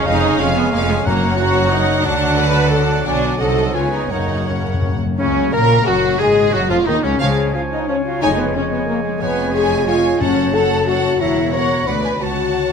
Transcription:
Already playing: G#3 F4 C#5 F5 C#6
0.00 C#4
0.06 F1 F2 G#3 C#4 D#4 C#5 F5 G#5
0.15 F3
0.23 C#4 C#5 F5 G#5
0.39 F1 F2 G#3 C#4 C#5 F5 G#5
0.48 G#4
0.55 B3 C#5 F5 G#5
0.64 C#6
0.72 F1 F2 A#3 C#5 F5 G#5
0.81 C#5
0.89 G#3 G#4 C#5 F5 G#5
0.98 C#4
1.05 F#1 F#2 F#3 A#3 C#5 F#5 A#5
1.15 C#3
1.23 C#4
1.31 F#4
1.39 F#3 F#4 A#4 C#5 F#5 A#5
1.48 C#5
1.56 F#5
1.64 A#5
1.72 D#4
1.81 A#4
1.90 F#4
1.98 C#4
2.05 D2 D3 F#3 D4 D5 F#5 A5
2.14 A3
2.23 D4
2.32 F#4
2.39 A4 B4
2.56 F#5
2.64 A5
2.72 F#3 A4 D5 F#5 A5
2.82 A4
2.90 F#4
2.99 D4
3.06 B1 B2 F#3 D4 D5 F#5 G#5
3.16 F#3
3.33 F#4
3.39 C2 C3 F#3 D#4 A4 C5 D#5 F#5
3.50 C4
3.59 D#4
3.67 F#4
3.74 C#2 C#3 G#3 B3 F4 B4 C#5 G#5
3.85 G#3
3.93 C#4 D#4
4.03 G#4
4.11 F#1 F#2 C#3 F#3 A#3 D#4 A#4 C#5 F#5
4.20 F#2 C#3
4.28 F#2 C#4
4.35 F#2
4.39 F#2 F#4
4.47 F#2 C#3 C#4 A#4 C#5 F#5
4.57 F#2 C#5
4.66 F#2 F#5
4.74 F#2 A#5
4.82 F#2 F#5
4.89 F#2 A#4
4.96 F#2
5.02 F#2 F#4
5.11 C#4
5.19 C#2 F#2 C#3 C#4 C#5
5.28 C#3
5.37 C#4
5.46 F#4
5.52 A#1 A#2 A#3 A#4 A#5
5.62 C#5
5.71 F#5
5.78 A#5
5.86 F#1 F#2 F#3 F#4 F#5
5.95 C#5
6.12 C#4
6.19 G#1 G#2 A#2 G#3 G#4 G#5
6.29 A#3
6.37 C#4
6.46 F#4
6.53 F#1 F#2 F#3 F#4 F#5
6.63 F#4
6.70 F1 F2 F3 F4 F5 F#5
6.79 C#6
6.86 D#2 D#3 D#4 D#5 F#5
6.96 C#5
7.03 C#2 C#3 C#4 F#4 C#5
7.13 C#4
7.20 C#2 C#3 F3 G#3 G#4 C#5 F5 G#5
7.30 G#3
7.39 C#4
7.47 F4
7.54 F3 F4 C#5 F5 G#5
7.65 F4
7.71 D#4 D#5 F5
7.81 C#6
7.88 F3 C#4 C#5 F5 G#5
7.97 C#5
8.04 F#3 F4 F5
8.14 C#4
8.22 F1 F2 G#3 D#4 C#5 D#5 G#5
8.30 F3
8.37 B3 C#4 B4
8.47 G#4
8.55 G#3 C#4 C#5 G#5
8.63 G#4
8.70 B3 B4 G#5
8.80 C#6
8.86 A#3 A#4 G#5
8.96 C#5
9.03 G#3 G#4
9.13 C#4
9.19 F1 F2 G#3 B3 B4 C#5 G#5
9.29 F3
9.38 C#4
9.46 G#4
9.53 G#4 C#5 G#5
9.62 G#4
9.70 G#5
9.79 C#6
9.86 F4 C#5 F5 G#5
9.95 C#5
10.04 G#4
10.13 C#4
10.20 F#1 F#2 F#3 C#4 A4 C#5 F#5 A5
10.29 C#3
10.45 F#4
10.53 A4 C#5 F#5 A5
10.71 F#5
10.79 A5
10.87 F#4 A4 C#5 F#5
11.05 F#4
11.13 C#4
11.20 E1 E2 E3 F#3 E4 A#4 C#5 E5 F#5 A#5
11.30 A#3
11.38 C#4
11.45 F#4
11.53 F#3 A#4 C#5 F#5 A#5 C#6
11.62 C#5
11.70 F#5
11.79 A#5
11.87 D2 D3 F#3 B4 D5 F#5 B5
11.97 D4
12.04 B3 G#5
12.14 F#4
12.21 C#2 C#3 F#3 F#4 C#5 F#5 A5
12.32 A3
12.41 C#4
12.49 F#4
12.58 A4
12.67 C#5

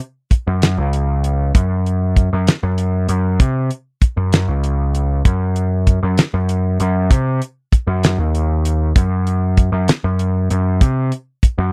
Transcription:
0.00 closed hi-hat
0.31 kick, closed hi-hat
0.47 F#2
0.62 snare, closed hi-hat
0.78 C#2
0.93 closed hi-hat
1.24 closed hi-hat
1.55 F#2, kick, closed hi-hat
1.86 closed hi-hat
2.16 kick, closed hi-hat
2.33 F#2
2.47 snare, closed hi-hat
2.63 F#2
2.78 closed hi-hat
3.09 F#2, closed hi-hat
3.40 C3, kick, closed hi-hat
3.71 closed hi-hat
4.02 kick, closed hi-hat
4.17 F#2
4.33 snare, closed hi-hat
4.48 C#2
4.64 closed hi-hat
4.95 closed hi-hat
5.25 F#2, kick, closed hi-hat
5.56 closed hi-hat
5.87 kick, closed hi-hat
6.03 F#2
6.18 snare, closed hi-hat
6.34 F#2
6.49 closed hi-hat
6.80 F#2, closed hi-hat
7.10 C3, kick, closed hi-hat
7.42 closed hi-hat
7.72 kick, closed hi-hat
7.87 F#2
8.03 snare, closed hi-hat
8.18 D#2
8.35 closed hi-hat
8.65 closed hi-hat
8.96 F#2, kick, closed hi-hat
9.27 closed hi-hat
9.57 kick, closed hi-hat
9.72 F#2
9.88 snare, closed hi-hat
10.04 F#2
10.19 closed hi-hat
10.50 F#2, closed hi-hat
10.81 C3, kick, closed hi-hat
11.12 closed hi-hat
11.43 kick, closed hi-hat
11.58 F#2

